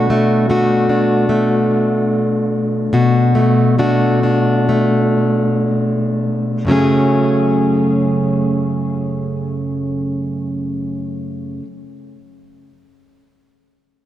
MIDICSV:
0, 0, Header, 1, 2, 480
1, 0, Start_track
1, 0, Key_signature, 3, "minor"
1, 0, Tempo, 806452
1, 1742, Time_signature, 4, 2, 24, 8
1, 1742, Tempo, 881057
1, 2702, Tempo, 961538
1, 3182, Tempo, 1025641
1, 3662, Tempo, 1054482
1, 7021, End_track
2, 0, Start_track
2, 0, Title_t, "Steel-string acoustic guitar"
2, 0, Program_c, 0, 25
2, 0, Note_on_c, 0, 47, 69
2, 0, Note_on_c, 0, 62, 64
2, 0, Note_on_c, 0, 66, 57
2, 60, Note_on_c, 0, 57, 46
2, 293, Note_off_c, 0, 57, 0
2, 296, Note_off_c, 0, 62, 0
2, 296, Note_on_c, 0, 57, 46
2, 298, Note_on_c, 0, 62, 49
2, 300, Note_off_c, 0, 66, 0
2, 302, Note_on_c, 0, 66, 50
2, 525, Note_off_c, 0, 62, 0
2, 532, Note_on_c, 0, 62, 41
2, 767, Note_off_c, 0, 57, 0
2, 769, Note_on_c, 0, 57, 45
2, 1736, Note_off_c, 0, 47, 0
2, 1743, Note_on_c, 0, 47, 65
2, 1745, Note_off_c, 0, 66, 0
2, 1747, Note_on_c, 0, 66, 52
2, 1971, Note_off_c, 0, 57, 0
2, 1973, Note_on_c, 0, 57, 48
2, 2206, Note_off_c, 0, 62, 0
2, 2208, Note_off_c, 0, 57, 0
2, 2210, Note_on_c, 0, 57, 46
2, 2213, Note_on_c, 0, 62, 43
2, 2214, Note_off_c, 0, 66, 0
2, 2216, Note_on_c, 0, 66, 50
2, 2447, Note_off_c, 0, 62, 0
2, 2454, Note_on_c, 0, 62, 44
2, 2700, Note_off_c, 0, 57, 0
2, 2702, Note_on_c, 0, 57, 42
2, 3648, Note_on_c, 0, 42, 50
2, 3656, Note_off_c, 0, 47, 0
2, 3658, Note_on_c, 0, 49, 50
2, 3664, Note_on_c, 0, 54, 53
2, 3669, Note_off_c, 0, 57, 0
2, 3671, Note_on_c, 0, 57, 58
2, 3674, Note_off_c, 0, 62, 0
2, 3676, Note_on_c, 0, 61, 55
2, 3680, Note_off_c, 0, 66, 0
2, 3682, Note_on_c, 0, 68, 60
2, 5902, Note_off_c, 0, 42, 0
2, 5911, Note_off_c, 0, 49, 0
2, 5917, Note_off_c, 0, 54, 0
2, 5924, Note_off_c, 0, 57, 0
2, 5929, Note_off_c, 0, 61, 0
2, 5935, Note_off_c, 0, 68, 0
2, 7021, End_track
0, 0, End_of_file